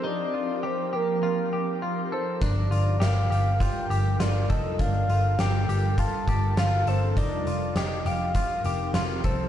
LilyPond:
<<
  \new Staff \with { instrumentName = "Soft synth lead" } { \time 4/4 \key g \minor \tempo 4 = 101 d''4 c''8 bes'4. r8 c''8 | d''4 f''4 g''4 d''8 ees''8 | f''4 g''4 a''4 f''8 c''8 | d''4 ees''8 f''4. r8 c''8 | }
  \new Staff \with { instrumentName = "Clean electric guitar" } { \time 4/4 \key g \minor ees'8 f'8 g'8 g'8 f'8 g'8 f'8 a'8 | d'8 f'8 g'8 g'8 f'8 g'8 f'8 a'8 | d'8 f'8 g'8 g'8 f'8 g'8 f'8 a'8 | ees'8 f'8 g'8 g'8 f'8 g'8 f'8 a'8 | }
  \new Staff \with { instrumentName = "Ambient pad" } { \time 4/4 \key g \minor << { bes'1~ | bes'1~ | bes'1 | bes'1 | } \\ { <f c' ees' g'>1 | <g d' f' a'>1~ | <g d' f' a'>1 | <f c' ees' g'>1 | } >> }
  \new Staff \with { instrumentName = "Picked electric bass" } { \clef bass \time 4/4 \key g \minor r1 | g,,8 g,,8 g,,8 g,,8. r16 g,,8 g,,8 f,,8 | g,,8 g,,8 g,,8 g,,8. r16 g,,8 g,,8 g,,8 | f,,8 f,,8 f,,8 f,,8. r16 f,,8 f,,8 c,8 | }
  \new DrumStaff \with { instrumentName = "Drums" } \drummode { \time 4/4 r4 r4 r4 r4 | <hh bd>8 hh8 <hh sn>8 hh8 <hh bd>8 hh8 <hh sn>8 <hh bd>8 | <hh bd>8 hh8 <hh sn>8 hh8 <hh bd>8 <hh bd>8 <hh sn>8 hh8 | <hh bd>8 hh8 <hh sn>8 hh8 <hh bd>8 hh8 <hh sn>8 <hh bd>8 | }
>>